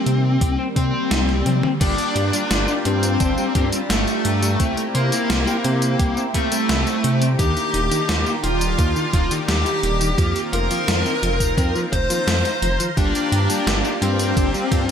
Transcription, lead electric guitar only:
0.00 0.62 C4 medium
0.76 1.67 C4 medium
1.81 2.72 D4 loud
2.85 3.76 C4 medium
3.90 4.81 A3 medium
4.95 6.20 A#3 medium
6.34 7.25 A3 medium
7.39 8.30 G4 loud
8.43 9.34 F4 medium
9.48 10.39 G4 loud
10.53 11.79 A#4 medium
11.93 12.83 C5 medium
12.97 13.88 D4 loud
14.02 14.91 C4 medium

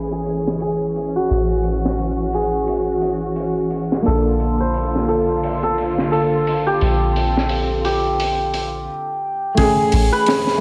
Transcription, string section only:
0.00 4.02 E3 medium
0.00 4.02 C#4 medium
0.00 1.27 G#4 medium
1.29 4.03 F#4 medium
4.06 8.85 D3 medium
4.06 6.79 A#3 medium
4.06 8.84 F4 medium
6.81 8.86 C4 medium
9.56 10.61 E3 medium
9.56 10.61 C#4 medium
9.56 10.61 G#4 loud

